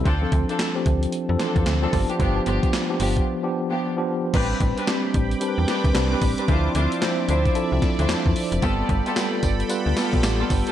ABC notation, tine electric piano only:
X:1
M:4/4
L:1/16
Q:"Swing 16ths" 1/4=112
K:Am
V:1 name="Tine electric piano"
z [F,CDA]3 z [F,CDG]3 z [E,F,CDA]3 z [F,CDA] [F,B,DG]2 | z [F,B,DG]3 z [F,B,DG]3 z [F,B,DG]3 z [F,B,DG]3 | [G,CDB]3 z [G,CDG]3 z [G,CD_B=B]3 z [G,CDB]3 z | [F,DEc]3 z [F,DEc]3 z [F,DEA]3 z [F,DEc]3 z |
[G,B,FA]3 z [G,B,FB]3 z [G,B,FB]3 z [G,B,FG]3 z |]